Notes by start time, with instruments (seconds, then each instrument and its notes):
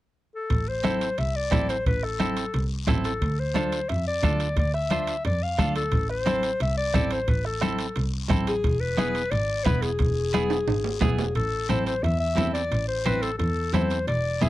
0.35 clarinet A4
0.50 double bass A1, bombo low, high conga, high timbale, long guiro
0.68 clarinet C5
0.84 clean electric guitar C4 E4 A4, bombo rim, high conga, high timbale, short guiro
1.01 high timbale, short guiro
1.18 double bass C2, clarinet E5, high conga, high timbale, long guiro
1.36 clarinet D5
1.51 double bass A1, clean electric guitar C4 E4 A4, bombo low, bombo rim, high conga, high timbale, low timbale, short guiro
1.69 clarinet C5, high timbale, short guiro
1.86 double bass A1, clarinet B4, bombo low, high conga, high timbale, long guiro
2.03 clarinet A4, bombo rim
2.20 clean electric guitar C4 E4 A4, bombo rim, high conga, high timbale, short guiro
2.37 high timbale, short guiro
2.54 double bass C2, high conga, high timbale, long guiro
2.87 double bass A1, clean electric guitar C4 E4 A4, bombo low, bombo rim, high conga, high timbale, low timbale, short guiro
3.04 clarinet A4, high timbale, short guiro
3.21 double bass D2, bombo low, high conga, high timbale, long guiro
3.40 clarinet C5
3.55 clean electric guitar D4 F4 A4, bombo rim, high conga, high timbale, short guiro
3.72 high timbale, short guiro
3.89 double bass F2, clarinet E5, high conga, high timbale, long guiro
4.08 clarinet D5
4.23 double bass D2, clean electric guitar D4 F4 A4, bombo low, bombo rim, high conga, high timbale, short guiro
4.40 high timbale, short guiro
4.57 double bass D2, clarinet D5, bombo low, high conga, high timbale, long guiro
4.74 clarinet E5, bombo rim
4.90 clean electric guitar D4 F4 C5, bombo rim, high conga, high timbale, short guiro
5.07 high timbale, short guiro
5.25 double bass F2, clarinet D5, high conga, high timbale, long guiro
5.43 clarinet F5
5.58 double bass D2, clean electric guitar D4 F4 A4, bombo low, bombo rim, high conga, high timbale, short guiro
5.76 clarinet A4, high timbale, short guiro
5.92 double bass A1, bombo low, high conga, high timbale, long guiro
6.09 clarinet C5, bombo rim
6.26 clean electric guitar C4 E4 A4, bombo rim, high conga, high timbale, short guiro
6.43 high timbale, short guiro
6.60 double bass C2, clarinet E5, high conga, high timbale, long guiro
6.78 clarinet D5
6.94 double bass A1, clean electric guitar C4 E4 A4, bombo low, bombo rim, high conga, high timbale, short guiro
7.11 clarinet C5, high timbale, short guiro
7.28 double bass A1, clarinet B4, bombo low, high conga, high timbale, long guiro
7.45 clarinet A4, bombo rim
7.61 clean electric guitar C4 E4 A4, bombo rim, high conga, high timbale, short guiro
7.79 high timbale, short guiro
7.96 double bass C2, high conga, high timbale, long guiro
8.30 double bass A1, clean electric guitar C4 E4 A4, bombo low, bombo rim, high conga, high timbale, short guiro
8.47 clarinet G#4, high timbale, short guiro
8.64 double bass E1, bombo low, high conga, high timbale, long guiro
8.81 clarinet B4
8.97 clean electric guitar B3 E4 G#4, bombo rim, high conga, high timbale, short guiro
9.15 high timbale, short guiro
9.31 double bass G#1, clarinet D5, high conga, high timbale, long guiro
9.65 double bass E1, clean electric guitar B3 E4 B4, clarinet B4, bombo low, bombo rim, high conga, high timbale, short guiro
9.82 clarinet G#4, high timbale, short guiro
9.99 double bass E1, bombo low, high conga, high timbale, long guiro
10.34 clean electric guitar B3 E4 G#4, bombo rim, high conga, high timbale, short guiro
10.50 high timbale, short guiro
10.67 double bass G#1, high conga, high timbale, long guiro
10.84 low timbale
11.01 double bass E1, clean electric guitar B3 E4 G#4, clarinet G#4, bombo low, bombo rim, high conga, low timbale, short guiro
11.18 low timbale, short guiro
11.35 double bass A1, clarinet A4, high conga, high timbale, long guiro
11.69 double bass A1, clean electric guitar C4 E4 A4, clarinet C5, high conga, high timbale, short guiro
11.87 clarinet C5, high timbale, short guiro
12.03 double bass E2, clarinet E5, high conga, high timbale, long guiro
12.20 clarinet E5
12.37 double bass E2, clean electric guitar C4 E4 A4, high conga, high timbale, low timbale, short guiro
12.54 clarinet D5, high timbale, short guiro
12.71 double bass A1, high conga, high timbale, long guiro
12.88 clarinet C5
13.06 double bass A1, clean electric guitar C4 E4 C5, clarinet B4, high conga, high timbale, short guiro
13.22 clarinet A4, high timbale, short guiro
13.38 double bass E2, clarinet A4, high conga, high timbale, long guiro
13.73 double bass E2, clean electric guitar C4 E4 A4, clarinet C5, high conga, high timbale, low timbale, short guiro
13.90 high timbale, short guiro
14.07 double bass E1, clarinet D5, high conga, high timbale, long guiro
14.41 double bass E1, clean electric guitar B3 E4 G#4, clarinet E5, high conga, high timbale, short guiro